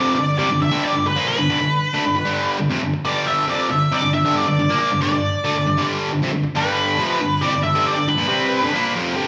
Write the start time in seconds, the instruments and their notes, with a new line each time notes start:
Already playing: distorted electric guitar F2 C3 F3, lead electric guitar D5
0.15 distorted electric guitar G2 D3, lead electric guitar D5
0.38 distorted electric guitar C3 G3, lead electric guitar D5
0.50 distorted electric guitar G2 D3
0.61 distorted electric guitar G2 D3, lead electric guitar E5
0.71 distorted electric guitar G2 D3 G3
0.85 lead electric guitar D5
0.96 distorted electric guitar G2 D3
1.06 distorted electric guitar G2 D3, lead electric guitar B4
1.16 distorted electric guitar A#2 F3 A#3
1.28 lead electric guitar B4
1.39 distorted electric guitar G2 D3
1.50 distorted electric guitar G2 D3
1.60 distorted electric guitar G2 D3
1.93 distorted electric guitar D3 A3
2.04 distorted electric guitar G2 D3
2.15 distorted electric guitar G2 D3
2.25 distorted electric guitar G2 D3 G3
2.59 distorted electric guitar G2 D3
2.70 distorted electric guitar F2 C3
2.82 distorted electric guitar G2 D3
2.93 muted distorted electric guitar stroke
3.05 distorted electric guitar G2 D3 G3, lead electric guitar D5
3.27 lead electric guitar E5
3.47 distorted electric guitar F2 C3 F3, lead electric guitar D5
3.69 distorted electric guitar G2 D3, lead electric guitar E5
3.92 distorted electric guitar C3 G3, lead electric guitar D5
4.02 distorted electric guitar G2 D3
4.14 distorted electric guitar G2 D3, lead electric guitar E5
4.25 distorted electric guitar G2 D3 G3
4.37 lead electric guitar D5
4.47 distorted electric guitar G2 D3
4.59 distorted electric guitar G2 D3
4.69 distorted electric guitar A#2 F3 A#3
4.79 lead electric guitar D5
4.92 distorted electric guitar G2 D3
5.01 distorted electric guitar G2 D3, lead electric guitar D5
5.12 distorted electric guitar G2 D3
5.44 distorted electric guitar D3 A3
5.55 distorted electric guitar G2 D3
5.66 distorted electric guitar G2 D3
5.77 distorted electric guitar G2 D3 G3
6.11 distorted electric guitar G2 D3
6.22 distorted electric guitar F2 C3
6.32 distorted electric guitar G2 D3
6.43 muted distorted electric guitar stroke
6.55 distorted electric guitar G2 D3 G3, lead electric guitar B4
6.98 distorted electric guitar F2 C3 F3
7.20 distorted electric guitar G2 D3
7.41 distorted electric guitar C3 G3, lead electric guitar D5
7.53 distorted electric guitar G2 D3
7.63 distorted electric guitar G2 D3, lead electric guitar E5
7.75 distorted electric guitar G2 D3 G3
7.87 lead electric guitar D5
7.97 distorted electric guitar G2 D3
8.08 distorted electric guitar G2 D3, lead electric guitar B4
8.17 distorted electric guitar A#2 F3
8.28 distorted electric guitar C3 G3 C4
8.62 distorted electric guitar G2 D3
8.73 distorted electric guitar A#2 F3 A#3
8.96 distorted electric guitar F2 C3 F3
9.16 distorted electric guitar G2 D3 G3